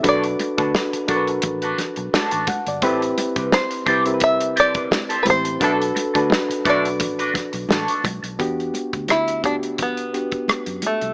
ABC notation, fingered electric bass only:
X:1
M:4/4
L:1/16
Q:"Swing 16ths" 1/4=86
K:Em
V:1 name="Fingered electric bass" clef=bass
B,,,2 z D,, z2 B,,,2 A,,,2 z B,,, z A,,, z G,,, | A,,,2 z C,, z2 C,,6 z2 A,,,2 | B,,,2 z D,, z2 B,,,2 A,,,2 z B,,, A,,, z B,,, B,,, | E,,2 z D,,8 z2 F,, z C,, |]